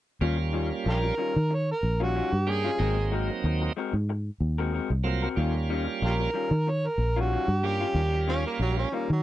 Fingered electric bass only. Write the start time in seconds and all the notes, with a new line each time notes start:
0.21 D#2
0.86 A#1
1.36 D#3
1.83 A#1
2.33 G2
2.80 G#1
3.44 D#2
3.93 G#2
4.40 D#2
4.90 C2
5.37 D#2
6.02 A#1
6.51 D#3
6.98 A#1
7.48 G2
7.94 D#2
8.59 A#1
9.10 D#3